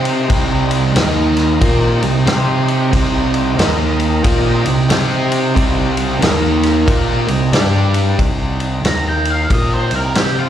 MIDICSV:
0, 0, Header, 1, 6, 480
1, 0, Start_track
1, 0, Key_signature, -3, "minor"
1, 0, Tempo, 657174
1, 216, Time_signature, 4, 2, 24, 8
1, 7663, End_track
2, 0, Start_track
2, 0, Title_t, "Lead electric guitar"
2, 0, Program_c, 0, 29
2, 6477, Note_on_c, 0, 82, 82
2, 6624, Note_off_c, 0, 82, 0
2, 6638, Note_on_c, 0, 79, 75
2, 6784, Note_off_c, 0, 79, 0
2, 6793, Note_on_c, 0, 77, 88
2, 6942, Note_off_c, 0, 77, 0
2, 6960, Note_on_c, 0, 75, 74
2, 7105, Note_off_c, 0, 75, 0
2, 7109, Note_on_c, 0, 72, 78
2, 7260, Note_off_c, 0, 72, 0
2, 7272, Note_on_c, 0, 70, 76
2, 7421, Note_off_c, 0, 70, 0
2, 7430, Note_on_c, 0, 67, 76
2, 7580, Note_off_c, 0, 67, 0
2, 7597, Note_on_c, 0, 65, 71
2, 7663, Note_off_c, 0, 65, 0
2, 7663, End_track
3, 0, Start_track
3, 0, Title_t, "Tonewheel organ"
3, 0, Program_c, 1, 16
3, 0, Note_on_c, 1, 60, 63
3, 0, Note_on_c, 1, 63, 64
3, 0, Note_on_c, 1, 67, 62
3, 0, Note_on_c, 1, 75, 66
3, 684, Note_off_c, 1, 60, 0
3, 687, Note_off_c, 1, 63, 0
3, 687, Note_off_c, 1, 75, 0
3, 688, Note_off_c, 1, 67, 0
3, 703, Note_on_c, 1, 75, 70
3, 704, Note_on_c, 1, 70, 71
3, 705, Note_on_c, 1, 63, 65
3, 1165, Note_off_c, 1, 63, 0
3, 1167, Note_off_c, 1, 75, 0
3, 1174, Note_on_c, 1, 63, 64
3, 1176, Note_on_c, 1, 75, 68
3, 1177, Note_off_c, 1, 70, 0
3, 1178, Note_on_c, 1, 60, 66
3, 1181, Note_on_c, 1, 67, 70
3, 2593, Note_off_c, 1, 63, 0
3, 2597, Note_off_c, 1, 75, 0
3, 2602, Note_on_c, 1, 63, 71
3, 2604, Note_on_c, 1, 70, 75
3, 2605, Note_off_c, 1, 60, 0
3, 2605, Note_on_c, 1, 75, 73
3, 2607, Note_off_c, 1, 67, 0
3, 3078, Note_off_c, 1, 63, 0
3, 3082, Note_on_c, 1, 60, 69
3, 3085, Note_off_c, 1, 75, 0
3, 3087, Note_off_c, 1, 70, 0
3, 3087, Note_on_c, 1, 63, 73
3, 3090, Note_on_c, 1, 67, 67
3, 3093, Note_on_c, 1, 75, 72
3, 4516, Note_off_c, 1, 60, 0
3, 4518, Note_off_c, 1, 63, 0
3, 4520, Note_off_c, 1, 67, 0
3, 4522, Note_off_c, 1, 75, 0
3, 4549, Note_on_c, 1, 63, 68
3, 4551, Note_on_c, 1, 70, 69
3, 4551, Note_on_c, 1, 75, 71
3, 5013, Note_off_c, 1, 63, 0
3, 5015, Note_off_c, 1, 75, 0
3, 5020, Note_off_c, 1, 70, 0
3, 5022, Note_on_c, 1, 63, 63
3, 5024, Note_on_c, 1, 67, 65
3, 5024, Note_on_c, 1, 75, 70
3, 5027, Note_on_c, 1, 60, 66
3, 5483, Note_off_c, 1, 67, 0
3, 5492, Note_on_c, 1, 67, 73
3, 5494, Note_on_c, 1, 62, 70
3, 5496, Note_off_c, 1, 63, 0
3, 5497, Note_off_c, 1, 75, 0
3, 5498, Note_off_c, 1, 60, 0
3, 5501, Note_on_c, 1, 74, 65
3, 5953, Note_off_c, 1, 67, 0
3, 5962, Note_on_c, 1, 67, 62
3, 5963, Note_on_c, 1, 75, 65
3, 5964, Note_on_c, 1, 60, 61
3, 5966, Note_on_c, 1, 63, 65
3, 5972, Note_off_c, 1, 62, 0
3, 5975, Note_off_c, 1, 74, 0
3, 6446, Note_off_c, 1, 67, 0
3, 6446, Note_off_c, 1, 75, 0
3, 6447, Note_off_c, 1, 60, 0
3, 6448, Note_off_c, 1, 63, 0
3, 6466, Note_on_c, 1, 63, 67
3, 6473, Note_on_c, 1, 70, 68
3, 6473, Note_on_c, 1, 75, 64
3, 6922, Note_off_c, 1, 63, 0
3, 6928, Note_off_c, 1, 75, 0
3, 6929, Note_on_c, 1, 67, 65
3, 6930, Note_on_c, 1, 60, 67
3, 6931, Note_on_c, 1, 63, 61
3, 6937, Note_on_c, 1, 75, 65
3, 6941, Note_off_c, 1, 70, 0
3, 7663, Note_off_c, 1, 60, 0
3, 7663, Note_off_c, 1, 63, 0
3, 7663, Note_off_c, 1, 67, 0
3, 7663, Note_off_c, 1, 75, 0
3, 7663, End_track
4, 0, Start_track
4, 0, Title_t, "Overdriven electric guitar"
4, 0, Program_c, 2, 29
4, 0, Note_on_c, 2, 60, 86
4, 0, Note_on_c, 2, 67, 93
4, 0, Note_on_c, 2, 72, 95
4, 211, Note_off_c, 2, 60, 0
4, 214, Note_off_c, 2, 67, 0
4, 214, Note_on_c, 2, 48, 84
4, 218, Note_off_c, 2, 72, 0
4, 218, Note_on_c, 2, 55, 89
4, 221, Note_on_c, 2, 60, 96
4, 690, Note_off_c, 2, 48, 0
4, 693, Note_off_c, 2, 55, 0
4, 694, Note_off_c, 2, 60, 0
4, 695, Note_on_c, 2, 51, 82
4, 698, Note_on_c, 2, 58, 83
4, 702, Note_on_c, 2, 63, 98
4, 1165, Note_off_c, 2, 58, 0
4, 1172, Note_off_c, 2, 51, 0
4, 1173, Note_on_c, 2, 58, 90
4, 1174, Note_off_c, 2, 63, 0
4, 1176, Note_on_c, 2, 65, 90
4, 1184, Note_on_c, 2, 70, 93
4, 1465, Note_off_c, 2, 58, 0
4, 1467, Note_off_c, 2, 65, 0
4, 1471, Note_off_c, 2, 70, 0
4, 1485, Note_on_c, 2, 48, 65
4, 1487, Note_on_c, 2, 55, 72
4, 1627, Note_off_c, 2, 48, 0
4, 1628, Note_off_c, 2, 55, 0
4, 1648, Note_on_c, 2, 60, 89
4, 1654, Note_on_c, 2, 67, 97
4, 1657, Note_on_c, 2, 72, 95
4, 2128, Note_off_c, 2, 60, 0
4, 2128, Note_on_c, 2, 48, 90
4, 2131, Note_off_c, 2, 67, 0
4, 2133, Note_off_c, 2, 72, 0
4, 2133, Note_on_c, 2, 55, 93
4, 2141, Note_on_c, 2, 60, 100
4, 2609, Note_off_c, 2, 48, 0
4, 2611, Note_off_c, 2, 55, 0
4, 2615, Note_off_c, 2, 60, 0
4, 2616, Note_on_c, 2, 51, 101
4, 2622, Note_on_c, 2, 58, 99
4, 2626, Note_on_c, 2, 63, 105
4, 3087, Note_off_c, 2, 58, 0
4, 3092, Note_off_c, 2, 51, 0
4, 3096, Note_on_c, 2, 58, 98
4, 3098, Note_off_c, 2, 63, 0
4, 3101, Note_on_c, 2, 65, 105
4, 3107, Note_on_c, 2, 70, 106
4, 3387, Note_off_c, 2, 58, 0
4, 3389, Note_off_c, 2, 65, 0
4, 3390, Note_on_c, 2, 48, 68
4, 3391, Note_on_c, 2, 55, 73
4, 3393, Note_off_c, 2, 70, 0
4, 3539, Note_off_c, 2, 48, 0
4, 3540, Note_off_c, 2, 55, 0
4, 3569, Note_on_c, 2, 60, 80
4, 3575, Note_on_c, 2, 67, 93
4, 3583, Note_on_c, 2, 72, 105
4, 4049, Note_off_c, 2, 60, 0
4, 4052, Note_off_c, 2, 67, 0
4, 4055, Note_on_c, 2, 48, 86
4, 4056, Note_off_c, 2, 72, 0
4, 4060, Note_on_c, 2, 55, 87
4, 4065, Note_on_c, 2, 60, 99
4, 4531, Note_off_c, 2, 48, 0
4, 4534, Note_off_c, 2, 55, 0
4, 4534, Note_on_c, 2, 51, 90
4, 4537, Note_off_c, 2, 60, 0
4, 4538, Note_on_c, 2, 58, 102
4, 4542, Note_on_c, 2, 63, 101
4, 5002, Note_off_c, 2, 58, 0
4, 5011, Note_off_c, 2, 51, 0
4, 5011, Note_on_c, 2, 58, 95
4, 5014, Note_off_c, 2, 63, 0
4, 5017, Note_on_c, 2, 65, 94
4, 5022, Note_on_c, 2, 70, 103
4, 5304, Note_off_c, 2, 58, 0
4, 5307, Note_off_c, 2, 65, 0
4, 5309, Note_off_c, 2, 70, 0
4, 5312, Note_on_c, 2, 48, 66
4, 5316, Note_on_c, 2, 55, 81
4, 5460, Note_off_c, 2, 48, 0
4, 5462, Note_off_c, 2, 55, 0
4, 5499, Note_on_c, 2, 55, 82
4, 5504, Note_on_c, 2, 62, 100
4, 5508, Note_on_c, 2, 67, 88
4, 5974, Note_off_c, 2, 55, 0
4, 5976, Note_off_c, 2, 62, 0
4, 5978, Note_off_c, 2, 67, 0
4, 7663, End_track
5, 0, Start_track
5, 0, Title_t, "Fingered electric bass"
5, 0, Program_c, 3, 33
5, 0, Note_on_c, 3, 48, 85
5, 188, Note_off_c, 3, 48, 0
5, 218, Note_on_c, 3, 36, 96
5, 669, Note_off_c, 3, 36, 0
5, 696, Note_on_c, 3, 39, 84
5, 1148, Note_off_c, 3, 39, 0
5, 1181, Note_on_c, 3, 46, 100
5, 1457, Note_off_c, 3, 46, 0
5, 1478, Note_on_c, 3, 36, 77
5, 1647, Note_off_c, 3, 36, 0
5, 1659, Note_on_c, 3, 48, 86
5, 2110, Note_off_c, 3, 48, 0
5, 2139, Note_on_c, 3, 36, 101
5, 2590, Note_off_c, 3, 36, 0
5, 2615, Note_on_c, 3, 39, 88
5, 3068, Note_off_c, 3, 39, 0
5, 3103, Note_on_c, 3, 46, 106
5, 3378, Note_off_c, 3, 46, 0
5, 3400, Note_on_c, 3, 36, 77
5, 3568, Note_off_c, 3, 36, 0
5, 3581, Note_on_c, 3, 48, 82
5, 4031, Note_off_c, 3, 48, 0
5, 4067, Note_on_c, 3, 36, 100
5, 4514, Note_off_c, 3, 36, 0
5, 4543, Note_on_c, 3, 39, 87
5, 4992, Note_off_c, 3, 39, 0
5, 5025, Note_on_c, 3, 46, 103
5, 5299, Note_off_c, 3, 46, 0
5, 5321, Note_on_c, 3, 36, 77
5, 5489, Note_off_c, 3, 36, 0
5, 5492, Note_on_c, 3, 43, 84
5, 5946, Note_off_c, 3, 43, 0
5, 5981, Note_on_c, 3, 36, 86
5, 6431, Note_off_c, 3, 36, 0
5, 6452, Note_on_c, 3, 39, 88
5, 6906, Note_off_c, 3, 39, 0
5, 6945, Note_on_c, 3, 46, 93
5, 7219, Note_off_c, 3, 46, 0
5, 7240, Note_on_c, 3, 36, 68
5, 7408, Note_off_c, 3, 36, 0
5, 7415, Note_on_c, 3, 48, 76
5, 7663, Note_off_c, 3, 48, 0
5, 7663, End_track
6, 0, Start_track
6, 0, Title_t, "Drums"
6, 37, Note_on_c, 9, 51, 64
6, 110, Note_off_c, 9, 51, 0
6, 217, Note_on_c, 9, 51, 90
6, 218, Note_on_c, 9, 36, 99
6, 290, Note_off_c, 9, 51, 0
6, 291, Note_off_c, 9, 36, 0
6, 517, Note_on_c, 9, 51, 70
6, 590, Note_off_c, 9, 51, 0
6, 699, Note_on_c, 9, 51, 91
6, 705, Note_on_c, 9, 38, 107
6, 772, Note_off_c, 9, 51, 0
6, 778, Note_off_c, 9, 38, 0
6, 998, Note_on_c, 9, 51, 61
6, 1004, Note_on_c, 9, 38, 27
6, 1071, Note_off_c, 9, 51, 0
6, 1077, Note_off_c, 9, 38, 0
6, 1179, Note_on_c, 9, 51, 91
6, 1180, Note_on_c, 9, 36, 105
6, 1252, Note_off_c, 9, 51, 0
6, 1253, Note_off_c, 9, 36, 0
6, 1479, Note_on_c, 9, 51, 66
6, 1552, Note_off_c, 9, 51, 0
6, 1659, Note_on_c, 9, 51, 86
6, 1665, Note_on_c, 9, 38, 119
6, 1732, Note_off_c, 9, 51, 0
6, 1738, Note_off_c, 9, 38, 0
6, 1960, Note_on_c, 9, 51, 61
6, 2033, Note_off_c, 9, 51, 0
6, 2140, Note_on_c, 9, 36, 99
6, 2141, Note_on_c, 9, 51, 95
6, 2213, Note_off_c, 9, 36, 0
6, 2214, Note_off_c, 9, 51, 0
6, 2438, Note_on_c, 9, 51, 66
6, 2511, Note_off_c, 9, 51, 0
6, 2622, Note_on_c, 9, 51, 91
6, 2628, Note_on_c, 9, 38, 116
6, 2695, Note_off_c, 9, 51, 0
6, 2701, Note_off_c, 9, 38, 0
6, 2919, Note_on_c, 9, 51, 62
6, 2992, Note_off_c, 9, 51, 0
6, 3098, Note_on_c, 9, 51, 102
6, 3100, Note_on_c, 9, 36, 114
6, 3171, Note_off_c, 9, 51, 0
6, 3173, Note_off_c, 9, 36, 0
6, 3400, Note_on_c, 9, 51, 71
6, 3473, Note_off_c, 9, 51, 0
6, 3579, Note_on_c, 9, 51, 98
6, 3584, Note_on_c, 9, 38, 110
6, 3652, Note_off_c, 9, 51, 0
6, 3657, Note_off_c, 9, 38, 0
6, 3883, Note_on_c, 9, 51, 72
6, 3956, Note_off_c, 9, 51, 0
6, 4064, Note_on_c, 9, 36, 97
6, 4068, Note_on_c, 9, 51, 98
6, 4137, Note_off_c, 9, 36, 0
6, 4141, Note_off_c, 9, 51, 0
6, 4361, Note_on_c, 9, 51, 73
6, 4434, Note_off_c, 9, 51, 0
6, 4545, Note_on_c, 9, 51, 100
6, 4550, Note_on_c, 9, 38, 109
6, 4618, Note_off_c, 9, 51, 0
6, 4623, Note_off_c, 9, 38, 0
6, 4845, Note_on_c, 9, 51, 66
6, 4851, Note_on_c, 9, 38, 30
6, 4918, Note_off_c, 9, 51, 0
6, 4924, Note_off_c, 9, 38, 0
6, 5023, Note_on_c, 9, 36, 109
6, 5025, Note_on_c, 9, 51, 88
6, 5096, Note_off_c, 9, 36, 0
6, 5098, Note_off_c, 9, 51, 0
6, 5319, Note_on_c, 9, 51, 70
6, 5392, Note_off_c, 9, 51, 0
6, 5501, Note_on_c, 9, 51, 94
6, 5506, Note_on_c, 9, 38, 114
6, 5574, Note_off_c, 9, 51, 0
6, 5579, Note_off_c, 9, 38, 0
6, 5800, Note_on_c, 9, 51, 65
6, 5873, Note_off_c, 9, 51, 0
6, 5981, Note_on_c, 9, 51, 88
6, 5982, Note_on_c, 9, 36, 99
6, 6054, Note_off_c, 9, 51, 0
6, 6055, Note_off_c, 9, 36, 0
6, 6282, Note_on_c, 9, 51, 62
6, 6355, Note_off_c, 9, 51, 0
6, 6462, Note_on_c, 9, 51, 90
6, 6468, Note_on_c, 9, 38, 109
6, 6535, Note_off_c, 9, 51, 0
6, 6541, Note_off_c, 9, 38, 0
6, 6759, Note_on_c, 9, 51, 63
6, 6832, Note_off_c, 9, 51, 0
6, 6941, Note_on_c, 9, 36, 102
6, 6941, Note_on_c, 9, 51, 93
6, 7014, Note_off_c, 9, 36, 0
6, 7014, Note_off_c, 9, 51, 0
6, 7237, Note_on_c, 9, 51, 70
6, 7310, Note_off_c, 9, 51, 0
6, 7416, Note_on_c, 9, 51, 96
6, 7422, Note_on_c, 9, 38, 113
6, 7489, Note_off_c, 9, 51, 0
6, 7495, Note_off_c, 9, 38, 0
6, 7663, End_track
0, 0, End_of_file